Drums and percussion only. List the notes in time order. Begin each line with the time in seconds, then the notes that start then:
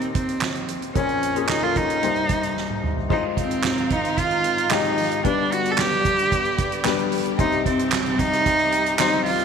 0.01 closed hi-hat
0.15 kick, closed hi-hat
0.29 closed hi-hat
0.41 snare, clap
0.55 closed hi-hat
0.68 closed hi-hat
0.82 closed hi-hat
0.95 kick, closed hi-hat
1.09 closed hi-hat
1.23 closed hi-hat
1.36 closed hi-hat
1.49 snare, clap
1.76 kick, closed hi-hat
1.90 closed hi-hat
2.03 closed hi-hat
2.16 closed hi-hat
2.29 kick, closed hi-hat
2.43 closed hi-hat
2.57 snare
2.70 high tom
2.84 mid tom
2.97 floor tom
3.10 kick, crash
3.37 kick, closed hi-hat
3.51 closed hi-hat
3.63 snare, clap
3.78 closed hi-hat
3.90 kick, closed hi-hat
4.05 closed hi-hat
4.17 kick, closed hi-hat
4.31 closed hi-hat
4.44 closed hi-hat
4.58 closed hi-hat
4.71 snare, clap
4.85 closed hi-hat
4.98 open hi-hat
5.12 closed hi-hat
5.25 kick, closed hi-hat
5.52 closed hi-hat
5.65 closed hi-hat
5.78 snare, clap
5.92 closed hi-hat
6.05 kick, closed hi-hat
6.19 closed hi-hat
6.32 kick, closed hi-hat
6.45 closed hi-hat
6.58 kick, closed hi-hat
6.72 closed hi-hat
6.85 snare, clap
6.99 closed hi-hat
7.12 open hi-hat
7.26 closed hi-hat
7.39 kick, closed hi-hat
7.52 closed hi-hat
7.66 kick, closed hi-hat
7.79 closed hi-hat
7.92 snare, clap
8.06 closed hi-hat
8.19 kick, closed hi-hat
8.33 snare, closed hi-hat
8.46 kick, closed hi-hat
8.59 closed hi-hat
8.72 closed hi-hat
8.86 closed hi-hat
8.99 snare, clap
9.13 closed hi-hat
9.26 open hi-hat
9.40 closed hi-hat